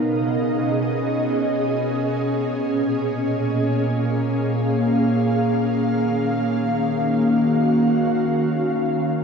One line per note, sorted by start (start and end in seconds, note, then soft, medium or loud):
0.00 2.41 B2 medium
0.00 2.42 B3 medium
0.00 9.24 C#4 medium
0.00 0.42 D#4 medium
0.00 7.09 G#4 medium
0.00 0.41 A#4 medium
0.00 3.76 D#5 medium
0.00 0.41 F5 medium
2.42 5.75 A#2 medium
2.75 9.08 A#3 medium
3.66 9.24 F5 medium
5.75 9.08 D#3 medium
6.84 9.07 F#4 medium